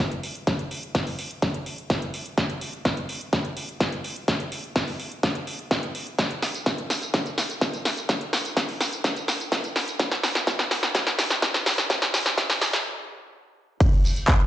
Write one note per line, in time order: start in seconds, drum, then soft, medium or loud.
0.12 closed hi-hat soft
0.23 open hi-hat loud
0.35 closed hi-hat soft
0.47 kick loud
0.47 snare medium
0.47 closed hi-hat medium
0.59 closed hi-hat soft
0.71 open hi-hat loud
0.83 closed hi-hat soft
0.95 kick loud
0.95 snare soft
0.95 closed hi-hat medium
1.07 open hi-hat medium
1.19 open hi-hat loud
1.31 closed hi-hat soft
1.42 kick loud
1.42 snare medium
1.42 closed hi-hat medium
1.54 closed hi-hat soft
1.66 open hi-hat loud
1.78 closed hi-hat soft
1.90 kick loud
1.90 snare medium
1.90 closed hi-hat medium
2.02 closed hi-hat soft
2.14 open hi-hat loud
2.26 closed hi-hat soft
2.38 kick loud
2.38 snare medium
2.38 closed hi-hat medium
2.50 closed hi-hat soft
2.61 open hi-hat loud
2.73 closed hi-hat soft
2.85 kick loud
2.85 snare medium
2.85 closed hi-hat medium
2.97 closed hi-hat soft
3.09 open hi-hat loud
3.21 closed hi-hat soft
3.33 kick loud
3.33 snare medium
3.33 closed hi-hat medium
3.45 closed hi-hat soft
3.57 open hi-hat loud
3.69 closed hi-hat soft
3.80 kick loud
3.80 snare medium
3.80 closed hi-hat medium
3.92 closed hi-hat soft
4.04 open hi-hat loud
4.16 closed hi-hat soft
4.28 kick loud
4.28 snare medium
4.28 closed hi-hat medium
4.40 closed hi-hat soft
4.52 open hi-hat loud
4.64 closed hi-hat soft
4.76 kick loud
4.76 snare medium
4.76 closed hi-hat medium
4.88 open hi-hat medium
5.00 open hi-hat loud
5.11 closed hi-hat soft
5.23 kick loud
5.23 snare medium
5.23 closed hi-hat medium
5.35 closed hi-hat soft
5.47 open hi-hat loud
5.59 closed hi-hat soft
5.71 kick loud
5.71 snare medium
5.71 closed hi-hat medium
5.83 closed hi-hat soft
5.95 open hi-hat loud
6.07 closed hi-hat soft
6.19 kick loud
6.19 snare medium
6.19 closed hi-hat medium
6.19 tambourine soft
6.31 closed hi-hat soft
6.42 snare medium
6.42 open hi-hat loud
6.42 tambourine medium
6.54 closed hi-hat soft
6.54 tambourine soft
6.66 kick loud
6.66 snare medium
6.66 closed hi-hat medium
6.66 tambourine soft
6.78 closed hi-hat soft
6.90 snare medium
6.90 open hi-hat loud
6.90 tambourine medium
7.02 closed hi-hat soft
7.02 tambourine soft
7.14 kick loud
7.14 snare medium
7.14 closed hi-hat medium
7.14 tambourine soft
7.26 closed hi-hat soft
7.26 tambourine soft
7.38 snare medium
7.38 open hi-hat loud
7.38 tambourine medium
7.50 closed hi-hat soft
7.50 tambourine soft
7.61 kick loud
7.61 snare medium
7.61 closed hi-hat medium
7.61 tambourine soft
7.73 closed hi-hat soft
7.73 tambourine soft
7.85 snare medium
7.85 open hi-hat loud
7.85 tambourine medium
7.97 closed hi-hat soft
7.97 tambourine soft
8.09 kick loud
8.09 snare medium
8.09 closed hi-hat medium
8.09 tambourine soft
8.21 closed hi-hat soft
8.33 snare medium
8.33 open hi-hat medium
8.33 tambourine medium
8.45 closed hi-hat soft
8.45 tambourine soft
8.57 kick loud
8.57 snare medium
8.57 closed hi-hat medium
8.57 tambourine soft
8.69 open hi-hat medium
8.81 snare medium
8.81 open hi-hat loud
8.81 tambourine medium
8.92 closed hi-hat soft
8.92 tambourine soft
9.04 kick loud
9.04 snare medium
9.04 closed hi-hat medium
9.04 tambourine soft
9.16 closed hi-hat soft
9.16 tambourine soft
9.28 snare medium
9.28 open hi-hat loud
9.28 tambourine medium
9.40 closed hi-hat soft
9.40 tambourine soft
9.52 kick loud
9.52 snare medium
9.52 closed hi-hat medium
9.52 tambourine soft
9.64 closed hi-hat soft
9.64 tambourine soft
9.76 snare medium
9.76 open hi-hat loud
9.76 tambourine medium
9.88 closed hi-hat soft
9.88 tambourine soft
9.99 kick loud
9.99 snare loud
9.99 closed hi-hat medium
9.99 tambourine soft
10.12 snare medium
10.12 closed hi-hat soft
10.23 snare medium
10.23 open hi-hat loud
10.23 tambourine medium
10.35 snare medium
10.35 closed hi-hat soft
10.35 tambourine soft
10.47 kick loud
10.47 snare medium
10.47 closed hi-hat medium
10.47 tambourine soft
10.59 snare medium
10.59 closed hi-hat soft
10.71 snare loud
10.71 open hi-hat loud
10.71 tambourine medium
10.83 snare medium
10.83 closed hi-hat soft
10.83 tambourine soft
10.95 kick loud
10.95 snare loud
10.95 closed hi-hat medium
10.95 tambourine soft
11.07 snare medium
11.07 closed hi-hat soft
11.07 tambourine soft
11.19 snare loud
11.19 open hi-hat loud
11.19 tambourine medium
11.30 snare medium
11.30 closed hi-hat soft
11.30 tambourine soft
11.42 kick loud
11.42 snare medium
11.42 closed hi-hat medium
11.42 tambourine soft
11.54 snare medium
11.54 closed hi-hat soft
11.54 tambourine soft
11.66 snare loud
11.66 open hi-hat loud
11.66 tambourine medium
11.78 snare medium
11.78 closed hi-hat soft
11.78 tambourine soft
11.90 kick loud
11.90 snare loud
11.90 closed hi-hat medium
11.90 tambourine soft
12.02 snare medium
12.02 closed hi-hat soft
12.02 tambourine soft
12.14 snare loud
12.14 open hi-hat loud
12.14 tambourine medium
12.26 snare medium
12.26 closed hi-hat soft
12.26 tambourine soft
12.38 kick loud
12.38 snare loud
12.38 closed hi-hat medium
12.38 tambourine soft
12.50 snare medium
12.50 open hi-hat medium
12.50 tambourine soft
12.62 snare loud
12.62 open hi-hat loud
12.62 tambourine medium
12.73 snare loud
12.73 closed hi-hat soft
12.73 tambourine soft
13.80 kick loud
13.80 closed hi-hat medium
13.80 crash loud
13.80 tambourine soft
13.92 closed hi-hat soft
14.04 open hi-hat loud
14.04 tambourine medium
14.16 closed hi-hat soft
14.16 tambourine soft
14.28 kick loud
14.28 clap loud
14.28 closed hi-hat medium
14.28 tambourine soft
14.40 closed hi-hat soft